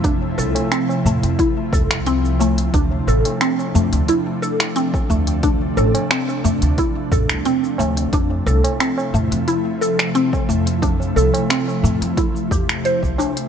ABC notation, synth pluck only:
X:1
M:4/4
L:1/16
Q:"Swing 16ths" 1/4=89
K:F
V:1 name="Synth pluck"
D2 A z C z A, z E z A z C z A, z | D2 A z C z A, z E z A z C z A, z | D2 A z C z A, z E z A z C z A, z | D2 A z C z A, z E z A z C z A, z |
D2 A z C z A, z E z G z c2 D2 |]